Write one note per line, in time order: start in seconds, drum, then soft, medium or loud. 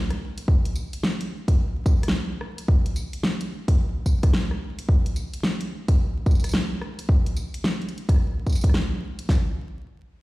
0.10 cross-stick soft
0.10 closed hi-hat soft
0.38 closed hi-hat medium
0.48 kick loud
0.65 closed hi-hat medium
0.76 tambourine medium
0.93 closed hi-hat medium
1.03 snare loud
1.21 closed hi-hat medium
1.48 kick loud
1.48 closed hi-hat medium
1.86 kick loud
1.86 tambourine medium
2.03 cross-stick soft
2.03 closed hi-hat medium
2.08 snare loud
2.41 cross-stick medium
2.58 closed hi-hat medium
2.68 kick loud
2.86 closed hi-hat medium
2.96 tambourine medium
3.13 closed hi-hat medium
3.23 snare loud
3.41 closed hi-hat medium
3.68 kick loud
3.68 closed hi-hat medium
4.06 kick medium
4.06 tambourine medium
4.23 kick loud
4.23 cross-stick soft
4.23 closed hi-hat medium
4.33 snare loud
4.51 cross-stick soft
4.79 closed hi-hat medium
4.89 kick loud
5.06 closed hi-hat medium
5.16 tambourine medium
5.34 closed hi-hat medium
5.43 snare loud
5.61 closed hi-hat medium
5.88 kick loud
5.88 closed hi-hat medium
6.26 kick loud
6.26 tambourine soft
6.31 tambourine soft
6.35 tambourine soft
6.40 tambourine soft
6.44 cross-stick soft
6.44 closed hi-hat medium
6.44 tambourine soft
6.46 tambourine soft
6.49 tambourine soft
6.51 snare loud
6.51 tambourine medium
6.81 cross-stick medium
6.99 closed hi-hat medium
7.09 kick loud
7.26 closed hi-hat soft
7.37 tambourine medium
7.54 closed hi-hat medium
7.64 snare loud
7.82 closed hi-hat soft
7.89 closed hi-hat soft
7.98 closed hi-hat soft
8.09 kick loud
8.09 cross-stick soft
8.09 closed hi-hat medium
8.11 cross-stick soft
8.14 cross-stick soft
8.16 cross-stick soft
8.17 cross-stick soft
8.46 kick medium
8.46 tambourine soft
8.49 tambourine soft
8.52 tambourine soft
8.55 tambourine soft
8.61 kick loud
8.61 closed hi-hat medium
8.61 tambourine medium
8.69 cross-stick soft
8.74 snare loud
9.19 closed hi-hat medium
9.29 kick loud
9.29 snare loud